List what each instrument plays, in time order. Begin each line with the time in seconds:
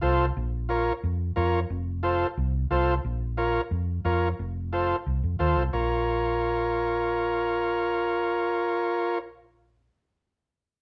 0.01 fingered electric bass C2, transistor combo organ F4 A4 C5
0.37 fingered electric bass A#1
0.69 transistor combo organ F4 A#4 C#5
1.03 fingered electric bass F2
1.36 fingered electric bass F2, transistor combo organ F4 A#4 C#5
1.70 fingered electric bass F1
2.03 transistor combo organ F4 A4 C5
2.37 fingered electric bass C2
2.71 fingered electric bass C2, transistor combo organ F4 A4 C5
3.04 fingered electric bass A#1
3.37 transistor combo organ F4 A#4 C#5
3.71 fingered electric bass F2
4.05 fingered electric bass F2, transistor combo organ F4 A#4 C#5
4.39 fingered electric bass F1
4.72 transistor combo organ F4 A4 C5
5.06 fingered electric bass C2
5.23 fingered electric bass F2
5.39 fingered electric bass D#2, transistor combo organ F4 A4 C5
5.57 fingered electric bass C2
5.73 fingered electric bass A#1, transistor combo organ F4 A#4 C#5